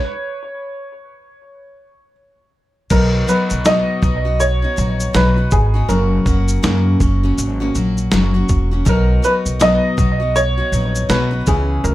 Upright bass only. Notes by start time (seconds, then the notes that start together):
2.91 B1
3.51 B1
4.02 B1
4.78 A#1
5.15 B1
5.52 G#1
5.89 F#1
6.26 F#1
6.64 F#2
7.00 F#1
7.38 G#1
7.75 A#1
8.13 F#1
8.50 E1
8.86 B1
9.46 B1
9.98 B1
10.72 A#1
11.09 B1
11.47 C#2
11.84 C#2